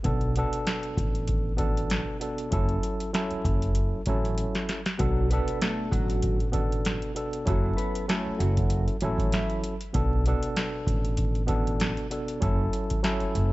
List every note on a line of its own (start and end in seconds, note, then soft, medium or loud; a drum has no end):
0.03 0.41 B1 loud
0.03 0.33 B2 medium
0.03 0.33 B3 medium
0.03 0.34 D4 medium
0.03 0.34 A4 loud
0.03 kick loud
0.03 closed hi-hat medium
0.21 closed hi-hat soft
0.36 1.51 B2 medium
0.36 1.51 B3 medium
0.36 1.52 D4 medium
0.36 1.52 A4 loud
0.36 closed hi-hat medium
0.53 closed hi-hat medium
0.67 cross-stick medium
0.67 snare loud
0.67 closed hi-hat medium
0.83 closed hi-hat soft
0.97 2.03 A1 medium
0.97 kick loud
0.97 closed hi-hat medium
1.15 closed hi-hat medium
1.28 kick loud
1.28 closed hi-hat medium
1.56 2.15 B2 loud
1.56 2.16 B3 medium
1.56 2.16 D4 medium
1.56 2.17 A4 loud
1.56 kick medium
1.56 closed hi-hat medium
1.77 closed hi-hat medium
1.90 cross-stick medium
1.90 snare loud
1.90 closed hi-hat medium
2.20 2.49 B2 medium
2.20 2.50 B3 medium
2.20 2.50 D4 medium
2.20 2.50 A4 medium
2.20 closed hi-hat medium
2.38 closed hi-hat medium
2.50 2.76 F#1 medium
2.50 3.09 F#3 medium
2.50 3.09 C#4 medium
2.50 3.10 E4 medium
2.50 3.10 A4 loud
2.50 kick loud
2.50 closed hi-hat medium
2.69 closed hi-hat soft
2.83 closed hi-hat medium
3.00 closed hi-hat medium
3.13 4.00 F#3 medium
3.13 4.00 C#4 medium
3.13 4.00 E4 medium
3.13 4.01 A4 loud
3.13 cross-stick medium
3.13 snare loud
3.13 closed hi-hat medium
3.31 muted upright bass stroke soft
3.31 closed hi-hat soft
3.44 3.92 F#1 medium
3.44 kick loud
3.44 closed hi-hat medium
3.62 closed hi-hat medium
3.75 closed hi-hat medium
4.06 4.43 A1 medium
4.06 4.79 F#3 loud
4.06 4.79 C#4 medium
4.06 4.80 E4 medium
4.06 4.80 A4 loud
4.06 kick medium
4.06 closed hi-hat medium
4.25 closed hi-hat soft
4.38 closed hi-hat medium
4.55 snare medium
4.55 closed hi-hat soft
4.69 snare medium
4.69 closed hi-hat medium
4.86 snare medium
4.86 closed hi-hat medium
4.98 5.36 B1 loud
4.98 5.27 B2 medium
4.98 5.27 F#3 medium
4.98 5.28 B3 medium
4.98 5.28 D4 medium
4.98 5.27 F#4 loud
4.98 5.29 A4 loud
4.98 kick loud
4.98 closed hi-hat medium
5.30 6.46 B2 medium
5.30 5.59 B3 medium
5.30 6.46 B3 medium
5.30 6.46 D4 medium
5.30 6.47 A4 loud
5.30 5.58 B4 medium
5.30 closed hi-hat medium
5.48 closed hi-hat medium
5.62 5.90 A3 medium
5.62 5.89 A4 medium
5.62 cross-stick loud
5.62 snare loud
5.62 closed hi-hat loud
5.91 6.98 A1 medium
5.91 6.37 F#3 medium
5.91 6.37 F#4 medium
5.91 kick loud
5.91 closed hi-hat medium
6.10 closed hi-hat medium
6.22 kick loud
6.22 closed hi-hat medium
6.40 closed hi-hat soft
6.51 7.10 B2 loud
6.51 7.11 B3 medium
6.51 7.11 D4 medium
6.51 7.11 A4 loud
6.51 kick loud
6.51 closed hi-hat medium
6.72 closed hi-hat medium
6.85 cross-stick loud
6.85 snare loud
6.85 closed hi-hat medium
7.02 closed hi-hat soft
7.14 7.44 B2 medium
7.14 7.44 B3 medium
7.14 7.45 D4 medium
7.14 7.45 A4 medium
7.14 closed hi-hat medium
7.33 closed hi-hat medium
7.45 7.71 F#1 medium
7.45 8.04 F#3 medium
7.45 8.04 C#4 medium
7.45 8.04 E4 medium
7.45 8.05 A4 loud
7.45 kick loud
7.45 closed hi-hat medium
7.50 7.77 F#3 medium
7.50 7.76 F#4 loud
7.77 8.06 B3 medium
7.77 8.05 B4 medium
7.77 closed hi-hat medium
7.95 closed hi-hat medium
8.08 8.94 F#3 medium
8.08 8.37 A3 medium
8.08 8.95 C#4 medium
8.08 8.95 E4 medium
8.08 8.37 A4 medium
8.08 8.96 A4 loud
8.08 cross-stick loud
8.08 snare loud
8.08 closed hi-hat loud
8.26 muted upright bass stroke soft
8.39 8.87 F#1 loud
8.39 8.85 F#3 medium
8.39 8.84 F#4 medium
8.39 closed hi-hat medium
8.57 kick medium
8.57 closed hi-hat medium
8.70 closed hi-hat medium
8.88 closed hi-hat soft
9.01 9.38 A1 medium
9.01 9.74 F#3 loud
9.01 9.74 C#4 medium
9.01 9.75 E4 medium
9.01 9.75 A4 loud
9.01 closed hi-hat medium
9.18 kick loud
9.18 closed hi-hat medium
9.32 9.61 E3 medium
9.32 9.61 E4 medium
9.32 cross-stick loud
9.32 snare loud
9.32 closed hi-hat medium
9.50 closed hi-hat soft
9.64 closed hi-hat medium
9.81 closed hi-hat medium
9.93 10.31 B1 loud
9.93 10.22 B2 medium
9.93 10.23 B3 medium
9.93 10.23 D4 medium
9.93 10.24 A4 loud
9.93 kick loud
9.93 closed hi-hat medium
10.26 11.40 B2 medium
10.26 11.41 B3 medium
10.26 11.41 D4 medium
10.26 11.42 A4 loud
10.26 closed hi-hat medium
10.43 closed hi-hat medium
10.56 cross-stick loud
10.56 snare loud
10.56 closed hi-hat medium
10.87 11.93 A1 medium
10.87 kick loud
10.87 closed hi-hat medium
11.05 closed hi-hat medium
11.17 kick loud
11.17 closed hi-hat medium
11.35 closed hi-hat soft
11.46 12.05 B2 loud
11.46 12.05 B3 medium
11.46 12.06 D4 medium
11.46 12.06 A4 loud
11.46 kick medium
11.46 closed hi-hat medium
11.67 closed hi-hat medium
11.80 cross-stick loud
11.80 snare loud
11.80 closed hi-hat medium
11.97 closed hi-hat soft
12.10 12.39 B2 medium
12.10 12.39 B3 medium
12.10 12.40 D4 medium
12.10 12.40 A4 medium
12.10 closed hi-hat medium
12.28 closed hi-hat medium
12.40 12.65 F#1 loud
12.40 12.98 F#3 medium
12.40 12.99 C#4 medium
12.40 12.99 E4 medium
12.40 13.00 A4 loud
12.40 kick loud
12.40 closed hi-hat medium
12.73 closed hi-hat medium
12.90 kick medium
12.90 closed hi-hat medium
13.03 13.53 F#3 medium
13.03 13.53 C#4 medium
13.03 13.53 E4 medium
13.03 13.53 A4 loud
13.03 cross-stick loud
13.03 snare loud
13.03 closed hi-hat loud
13.20 muted upright bass stroke soft
13.20 closed hi-hat soft
13.35 13.53 F#1 medium
13.35 closed hi-hat medium